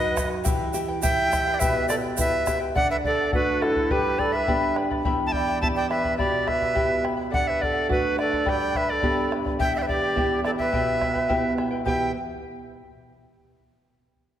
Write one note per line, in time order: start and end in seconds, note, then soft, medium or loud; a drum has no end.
0.00 0.42 F#2 medium
0.00 0.16 D#4 medium
0.00 0.13 B4 medium
0.00 0.29 B4 medium
0.00 0.14 D#5 medium
0.00 0.29 D#5 medium
0.00 0.15 F#5 medium
0.15 0.45 F#4 medium
0.15 0.30 B4 medium
0.15 0.30 D#5 medium
0.15 0.28 F#5 medium
0.15 bombo rim medium
0.15 bombo low medium
0.15 shaker medium
0.29 0.44 D#5 soft
0.29 0.43 F#5 medium
0.44 1.57 E3 medium
0.44 0.73 E4 medium
0.44 0.74 G4 medium
0.44 0.73 B4 medium
0.44 0.72 E5 medium
0.44 0.73 G5 medium
0.44 bombo low medium
0.44 shaker medium
0.73 0.88 E4 medium
0.73 1.02 G4 medium
0.73 0.88 B4 medium
0.73 0.88 E5 medium
0.73 0.87 G5 medium
0.73 shaker medium
0.88 1.01 E4 soft
0.88 1.02 B4 soft
0.88 1.02 G5 medium
1.02 1.30 E4 medium
1.02 1.31 E4 medium
1.02 1.31 G4 medium
1.02 1.30 B4 medium
1.02 1.55 E5 medium
1.02 1.29 E5 medium
1.02 1.54 G5 loud
1.02 1.31 G5 medium
1.02 bombo low medium
1.02 shaker medium
1.31 1.46 E4 medium
1.31 1.60 G4 medium
1.31 1.46 B4 medium
1.31 1.46 E5 medium
1.31 1.46 G5 medium
1.31 bombo rim medium
1.31 bombo low medium
1.31 shaker medium
1.47 1.60 E4 soft
1.47 1.60 B4 soft
1.47 1.60 G5 soft
1.54 1.61 D5 medium
1.54 1.61 G5 medium
1.59 2.72 B2 medium
1.59 1.87 E4 medium
1.59 1.89 G4 medium
1.59 1.89 B4 medium
1.59 1.88 B4 medium
1.59 1.88 E5 medium
1.59 1.87 E5 medium
1.59 1.88 G5 medium
1.59 bombo low medium
1.59 shaker loud
1.88 2.02 E4 medium
1.88 2.17 G4 medium
1.88 1.96 A4 medium
1.88 2.02 B4 medium
1.88 1.95 D5 medium
1.88 2.03 E5 medium
1.88 2.01 G5 medium
1.88 bombo rim medium
1.88 shaker medium
2.02 2.16 E4 soft
2.02 2.17 B4 soft
2.02 2.16 G5 soft
2.16 2.45 E4 medium
2.16 2.46 E4 medium
2.16 2.46 G4 medium
2.16 2.46 B4 medium
2.16 2.58 B4 medium
2.16 2.45 E5 medium
2.16 2.59 E5 medium
2.16 2.46 G5 medium
2.16 bombo low medium
2.16 shaker medium
2.46 2.60 E4 medium
2.46 2.75 G4 medium
2.46 2.59 B4 medium
2.46 2.61 E5 medium
2.46 2.58 G5 medium
2.46 bombo rim medium
2.46 bombo low medium
2.46 shaker medium
2.59 2.76 E4 soft
2.59 2.75 B4 soft
2.59 2.75 G5 medium
2.75 3.87 D3 medium
2.75 3.02 A4 medium
2.75 2.89 D5 medium
2.75 3.03 D5 medium
2.75 3.04 F#5 medium
2.75 2.89 F#5 loud
2.75 bombo low medium
2.91 2.97 B4 medium
2.91 2.97 E5 medium
3.03 3.18 A4 soft
3.03 3.32 A4 medium
3.03 3.18 D5 medium
3.03 3.31 D5 medium
3.03 3.16 F#5 medium
3.03 bombo low medium
3.18 3.31 D5 soft
3.18 3.32 F#5 soft
3.32 3.88 A3 soft
3.32 3.89 D4 soft
3.32 3.89 F#4 medium
3.32 3.65 F#4 medium
3.32 3.59 A4 medium
3.32 3.64 B4 medium
3.32 3.60 D5 medium
3.32 3.61 F#5 medium
3.32 bombo low medium
3.60 3.94 E4 medium
3.60 3.75 A4 medium
3.60 3.93 A4 medium
3.60 3.75 D5 medium
3.60 3.74 F#5 medium
3.60 bombo rim medium
3.76 3.90 D5 soft
3.76 3.90 F#5 soft
3.76 bombo low soft
3.90 5.01 G2 medium
3.90 4.19 G4 medium
3.90 4.22 G4 medium
3.90 4.17 B4 medium
3.90 4.20 B4 medium
3.90 4.18 D5 medium
3.90 4.17 G5 medium
3.90 4.18 B5 medium
3.90 bombo low medium
4.18 4.37 A4 medium
4.18 4.33 B4 medium
4.18 4.33 D5 medium
4.18 4.34 D5 medium
4.18 4.33 G5 medium
4.18 4.32 B5 medium
4.18 bombo low medium
4.32 4.46 B4 soft
4.32 4.77 B4 medium
4.32 4.47 D5 soft
4.32 4.76 E5 medium
4.32 4.47 B5 medium
4.47 5.03 B3 soft
4.47 5.03 D4 soft
4.47 4.76 G4 medium
4.47 5.03 G4 medium
4.47 4.76 B4 medium
4.47 4.76 D5 medium
4.47 4.75 G5 medium
4.47 4.76 B5 medium
4.47 bombo low medium
4.76 4.91 B4 medium
4.76 4.90 D5 medium
4.76 4.90 G5 medium
4.76 4.89 B5 medium
4.76 bombo rim medium
4.91 5.05 B4 soft
4.91 5.05 D5 medium
4.91 5.05 B5 medium
4.91 bombo low soft
5.05 6.16 E2 medium
5.05 5.33 E4 medium
5.05 5.33 G4 medium
5.05 5.33 E5 medium
5.05 5.33 G5 medium
5.05 5.34 B5 medium
5.05 bombo low medium
5.26 5.34 E5 medium
5.26 5.34 A5 medium
5.32 5.48 E4 medium
5.32 5.61 D5 medium
5.32 5.47 E5 medium
5.32 5.61 G5 medium
5.32 5.48 G5 medium
5.32 bombo low medium
5.37 5.46 B5 medium
5.48 5.60 E4 soft
5.48 5.61 E5 soft
5.48 5.61 B5 soft
5.61 6.18 B3 medium
5.61 5.88 E4 medium
5.61 6.18 E4 soft
5.61 5.90 G4 medium
5.61 6.18 G4 medium
5.61 5.68 E5 medium
5.61 5.89 E5 medium
5.61 5.88 G5 medium
5.61 5.68 A5 loud
5.61 5.89 B5 medium
5.61 bombo low medium
5.76 5.89 D5 medium
5.76 5.89 G5 medium
5.89 6.04 E4 medium
5.89 6.17 B4 medium
5.89 6.17 E5 medium
5.89 6.04 E5 medium
5.89 6.04 G5 soft
5.89 6.04 B5 medium
5.89 bombo rim soft
6.05 6.17 E4 soft
6.05 6.18 E5 soft
6.05 6.18 B5 medium
6.05 bombo low soft
6.18 7.30 B2 medium
6.18 6.45 E4 medium
6.18 6.47 G4 medium
6.18 6.50 G4 medium
6.18 6.49 D5 medium
6.18 6.46 E5 medium
6.18 6.44 G5 medium
6.18 6.46 B5 medium
6.18 bombo low medium
6.46 6.60 E4 medium
6.46 7.05 B4 medium
6.46 6.59 E5 medium
6.46 7.04 E5 medium
6.46 6.61 G5 medium
6.46 6.59 B5 medium
6.46 bombo rim soft
6.46 bombo low soft
6.60 6.74 E4 soft
6.60 6.75 E5 soft
6.60 6.74 B5 soft
6.60 bombo low soft
6.74 7.31 B3 soft
6.74 7.03 E4 medium
6.74 7.31 E4 soft
6.74 7.03 G4 medium
6.74 7.31 G4 medium
6.74 7.03 E5 medium
6.74 7.02 G5 medium
6.74 7.03 B5 medium
6.74 bombo low medium
7.03 7.16 E4 medium
7.03 7.16 E5 medium
7.03 7.18 G5 medium
7.03 7.15 B5 medium
7.03 bombo rim soft
7.17 7.32 E4 soft
7.17 7.30 E5 soft
7.17 7.32 B5 soft
7.31 8.43 D3 medium
7.31 7.58 A4 medium
7.31 7.59 D5 medium
7.31 7.60 F#5 medium
7.31 7.49 F#5 medium
7.31 bombo low medium
7.35 7.51 D5 medium
7.47 7.66 B4 medium
7.47 7.63 E5 medium
7.59 7.74 A4 medium
7.59 7.74 D5 medium
7.59 7.90 D5 medium
7.59 7.72 F#5 medium
7.59 bombo low medium
7.64 7.91 A4 medium
7.73 7.88 D5 soft
7.73 7.88 F#5 soft
7.89 8.44 A3 soft
7.89 8.44 D4 soft
7.89 8.44 F#4 medium
7.89 8.15 A4 medium
7.89 8.17 B4 medium
7.89 8.15 D5 medium
7.89 8.16 F#5 medium
7.89 bombo low medium
7.93 8.18 F#4 medium
8.16 8.31 A4 medium
8.16 8.31 D5 medium
8.16 8.50 D5 medium
8.16 8.30 F#5 medium
8.16 bombo rim soft
8.21 8.51 A4 medium
8.31 8.45 D5 soft
8.31 8.45 F#5 soft
8.31 bombo low soft
8.45 9.56 G2 medium
8.45 8.74 G4 medium
8.45 8.73 B4 medium
8.45 8.73 D5 medium
8.45 8.79 D5 medium
8.45 8.72 G5 medium
8.45 8.78 G5 loud
8.45 8.74 B5 medium
8.45 bombo low medium
8.73 8.88 B4 medium
8.73 8.93 B4 medium
8.73 8.89 D5 medium
8.73 8.91 E5 medium
8.73 8.88 G5 medium
8.73 8.87 B5 medium
8.73 bombo low medium
8.89 9.33 A4 medium
8.89 9.02 B4 soft
8.89 9.32 D5 medium
8.89 9.02 D5 soft
8.89 9.02 B5 soft
9.03 9.58 B3 medium
9.03 9.58 D4 soft
9.03 9.31 G4 medium
9.03 9.58 G4 medium
9.03 9.30 B4 medium
9.03 9.30 D5 medium
9.03 9.29 G5 medium
9.03 9.31 B5 medium
9.03 bombo low medium
9.31 9.45 B4 medium
9.31 9.44 D5 medium
9.31 9.45 G5 medium
9.31 9.43 B5 medium
9.31 bombo rim medium
9.45 9.58 B4 soft
9.45 9.59 D5 soft
9.45 9.59 B5 soft
9.45 bombo low medium
9.59 10.69 E2 medium
9.59 9.87 E4 medium
9.59 9.88 G4 medium
9.59 9.87 B4 medium
9.59 9.86 E5 medium
9.59 9.74 E5 medium
9.59 9.88 G5 medium
9.59 9.73 G5 loud
9.59 bombo low medium
9.76 9.84 D5 medium
9.76 9.79 E5 medium
9.76 9.82 G5 medium
9.81 9.88 B4 medium
9.81 9.87 E5 medium
9.87 10.02 E4 medium
9.87 10.41 G4 medium
9.87 10.02 B4 medium
9.87 10.41 D5 medium
9.87 10.02 E5 medium
9.87 10.00 G5 medium
9.87 bombo low medium
10.02 10.15 E4 soft
10.02 10.15 B4 soft
10.02 10.16 G5 medium
10.15 10.71 B3 soft
10.15 10.71 E4 soft
10.15 10.44 E4 medium
10.15 10.44 G4 medium
10.15 10.71 G4 medium
10.15 10.43 B4 medium
10.15 10.43 E5 medium
10.15 10.44 G5 medium
10.15 bombo low medium
10.44 10.58 E4 medium
10.44 10.52 A4 medium
10.44 10.57 B4 medium
10.44 10.51 D5 medium
10.44 10.58 E5 medium
10.44 10.57 G5 medium
10.44 bombo rim soft
10.58 10.72 E4 soft
10.58 10.72 B4 soft
10.58 11.54 B4 medium
10.58 11.53 E5 medium
10.58 10.72 G5 soft
10.58 bombo low soft
10.72 11.82 B2 medium
10.72 11.00 E4 medium
10.72 11.01 G4 medium
10.72 11.01 B4 medium
10.72 10.99 E5 medium
10.72 11.01 G5 medium
10.72 bombo low medium
11.01 11.14 E4 medium
11.01 11.14 B4 medium
11.01 11.15 E5 soft
11.01 11.13 G5 medium
11.01 bombo rim soft
11.01 bombo low soft
11.14 11.28 E4 soft
11.14 11.28 B4 soft
11.14 11.29 G5 soft
11.14 bombo low soft
11.29 11.84 B3 soft
11.29 11.57 E4 medium
11.29 11.85 E4 soft
11.29 11.57 G4 medium
11.29 11.85 G4 medium
11.29 11.57 B4 medium
11.29 11.82 B4 medium
11.29 11.56 E5 medium
11.29 11.58 G5 medium
11.29 bombo low medium
11.57 11.71 E4 medium
11.57 11.70 B4 medium
11.57 11.72 E5 medium
11.57 11.70 G5 medium
11.57 bombo rim soft
11.71 11.86 E4 soft
11.71 11.85 B4 soft
11.71 11.85 G5 medium
11.84 12.11 E2 medium
11.84 12.12 B2 soft
11.84 12.12 E3 medium
11.84 12.12 B3 medium
11.84 12.09 E4 medium
11.84 12.08 G4 medium
11.84 12.12 G4 medium
11.84 12.12 B4 medium
11.84 12.09 B4 medium
11.84 12.08 E5 medium
11.84 12.12 E5 medium
11.84 12.12 G5 medium
11.84 12.10 G5 medium
11.84 bombo low medium